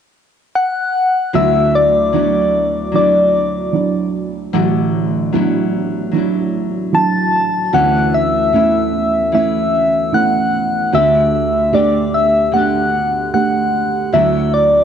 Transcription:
0.55 1.30 F#5 medium
1.33 4.50 D2 soft
1.33 2.13 D3 medium
1.33 2.11 F#3 medium
1.33 2.13 A3 medium
1.33 2.14 D4 medium
1.33 2.15 E4 medium
1.33 1.77 E5 medium
1.75 2.94 D5 medium
2.13 2.91 F#3 soft
2.13 2.94 A3 soft
2.13 2.91 D4 soft
2.13 2.94 D4 soft
2.13 2.91 E4 soft
2.13 2.95 E4 soft
2.92 4.52 F#3 soft
2.92 3.71 F#3 soft
2.92 4.54 A3 soft
2.92 3.71 D4 soft
2.92 3.72 E4 soft
2.92 4.11 D5 medium
2.97 4.53 D4 soft
2.97 4.55 E4 soft
3.73 4.51 F#3 soft
3.73 4.51 D4 soft
3.73 4.51 E4 soft
4.53 7.70 A1 medium
4.53 5.33 D3 medium
4.53 5.31 F#3 medium
4.53 5.33 A3 medium
4.53 5.33 D4 medium
4.53 5.35 E4 medium
5.33 6.10 F#3 soft
5.33 6.11 F#3 soft
5.33 6.14 A3 medium
5.33 6.11 D4 soft
5.33 6.14 D4 medium
5.33 6.11 E4 soft
5.33 6.15 E4 medium
6.12 7.73 F#3 soft
6.12 6.91 F#3 soft
6.12 7.74 A3 soft
6.12 6.91 D4 soft
6.12 6.91 E4 soft
6.16 7.74 D4 soft
6.16 7.74 E4 soft
6.93 7.71 F#3 soft
6.93 7.71 D4 soft
6.93 7.71 E4 soft
6.93 7.76 A5 loud
7.73 10.89 D2 medium
7.73 8.56 D3 medium
7.73 8.51 E3 medium
7.73 8.53 A3 medium
7.73 8.53 C#4 medium
7.73 8.54 E4 medium
7.73 8.16 F#5 medium
8.14 9.34 E5 loud
8.53 9.31 E3 soft
8.53 9.31 A3 soft
8.53 9.34 A3 soft
8.53 9.31 C#4 soft
8.53 9.34 C#4 soft
8.53 9.31 E4 soft
8.53 9.35 E4 medium
9.32 10.92 E3 soft
9.32 10.11 A3 soft
9.32 10.93 A3 soft
9.32 10.11 C#4 soft
9.32 10.11 E4 soft
9.32 10.16 E5 medium
9.37 10.94 C#4 soft
9.37 10.94 E4 soft
10.12 10.90 A3 soft
10.12 10.91 C#4 soft
10.12 10.91 E4 soft
10.12 10.96 F#5 medium
10.93 14.09 D2 medium
10.93 11.72 D3 medium
10.93 11.74 A3 medium
10.93 11.75 D4 medium
10.93 11.74 G4 medium
10.93 11.76 E5 medium
11.72 12.51 D3 soft
11.72 12.50 A3 soft
11.72 12.54 A3 soft
11.72 12.51 D4 soft
11.72 12.56 D4 soft
11.72 12.51 G4 soft
11.72 12.55 G4 medium
11.72 12.16 D5 medium
12.14 12.53 E5 medium
12.52 14.13 D3 soft
12.52 13.31 A3 soft
12.52 14.13 A3 soft
12.52 13.31 D4 soft
12.52 13.31 G4 soft
12.52 13.30 F#5 medium
12.56 14.14 D4 soft
12.56 14.14 G4 soft
13.33 14.11 A3 soft
13.33 14.11 D4 soft
13.33 14.12 G4 soft
13.33 14.10 F#5 medium
14.13 14.84 D2 soft
14.13 14.84 D3 medium
14.13 14.84 F#3 medium
14.13 14.84 A3 medium
14.13 14.84 D4 medium
14.13 14.84 E4 medium
14.13 14.55 E5 medium
14.54 14.84 D5 medium

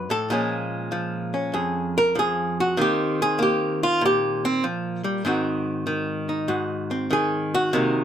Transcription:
0.00 0.31 F3 soft
0.00 0.28 C4 soft
0.00 0.28 D#4 soft
0.00 0.10 B4 medium
0.10 0.30 A2 medium
0.10 0.30 A4 medium
0.30 1.54 A#2 medium
0.30 0.91 F3 soft
0.30 2.77 G#3 soft
0.30 1.33 C#4 medium
0.30 1.53 G#4 soft
0.92 2.15 F3 medium
1.34 2.75 C#4 soft
1.54 2.77 F2 medium
1.54 1.95 G#4 soft
1.98 2.16 A#4 medium
2.15 2.77 F3 medium
2.15 2.59 G#4 medium
2.60 2.79 F#4 medium
2.77 4.63 D#3 medium
2.77 3.38 A#3 medium
2.77 4.45 C4 soft
2.81 3.21 G4 medium
3.22 3.41 G#4 loud
3.39 5.26 A#3 medium
3.39 3.83 G4 medium
3.83 4.02 F4 medium
4.01 5.25 A#2 medium
4.05 4.45 G4 medium
4.45 4.64 C4 medium
4.64 5.04 F3 medium
5.04 5.25 G3 medium
5.25 6.47 G#2 medium
5.25 5.85 D#3 medium
5.25 6.90 C4 medium
5.25 6.29 D#4 medium
5.25 6.47 F#4 soft
5.87 7.09 D#3 medium
6.29 7.70 D#4 soft
6.48 7.70 G#2 medium
6.48 7.10 F#4 soft
6.91 7.70 C4 soft
7.11 7.72 D#3 medium
7.11 7.53 G#4 medium
7.55 8.04 F#4 medium
7.73 8.04 C3 medium
7.73 8.04 D#3 soft
7.73 8.04 A#3 soft
7.73 8.04 D#4 medium

